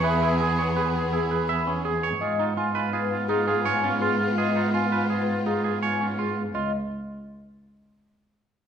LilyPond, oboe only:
\new Staff \with { instrumentName = "Oboe" } { \time 6/4 \key des \mixolydian \tempo 4 = 166 gis'8 gis'8 gis'8 gis'8 gis'8 gis'8 gis'8 gis'8 gis'8 gis'8 gis'8 r8 | f'8 f'8 f'8 f'8 f'8 f'8 f'8 f'8 f'8 f'8 f'8 f'8 | f'8 f'8 f'8 f'8 f'8 f'8 f'8 f'8 f'8 f'8 f'8 r8 | r1. | }